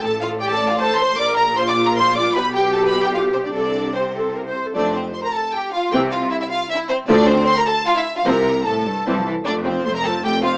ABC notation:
X:1
M:3/4
L:1/16
Q:1/4=153
K:F
V:1 name="Violin section"
a2 f2 g a2 f a2 c'2 | d'2 b2 c' d'2 b c'2 d'2 | =b2 g2 a b2 g f2 c d | d4 c4 z4 |
d2 c2 c' b a2 g2 f2 | g2 f2 e e f2 e2 c2 | d2 c2 c' b a2 f e2 f | b4 a6 z2 |
d2 c2 c' b a2 g2 f2 |]
V:2 name="Violin section"
A2 F2 G A2 F A2 c2 | d2 B2 c d2 B c2 d2 | =B2 G2 A B2 G F2 C D | D4 C4 z4 |
D2 C2 c B A2 G2 F2 | G2 F2 E E F2 E2 C2 | D2 C2 c B A2 F E2 F | B4 A6 z2 |
D2 C2 c B A2 G2 F2 |]
V:3 name="Viola section"
A4 d4 c4 | B4 F8 | G12 | A4 c2 A2 B c2 A |
[A,C]2 z8 z2 | [E,C]2 z8 z2 | [F,A,]2 z8 z2 | [F,C]2 z6 [E,C]2 z2 |
A,2 [F,C]2 A,2 [F,C]2 A,2 [F,C]2 |]
V:4 name="Cello section" clef=bass
A,,12 | B,,12 | =B,,12 | C,8- C,2 z2 |
F,,4 z8 | C,4 z8 | D,4 z8 | C,4 A,,2 G,,2 G, F, E,2 |
F,,4 F,,4 F,,4 |]
V:5 name="Double bass section" clef=bass
A,,,12 | B,,,12 | =B,,,12 | C,,8- C,,2 z2 |
F,,,4 z8 | C,,4 z8 | D,,4 z8 | C,,4 z4 C,,4 |
F,,,4 F,,,4 F,,,4 |]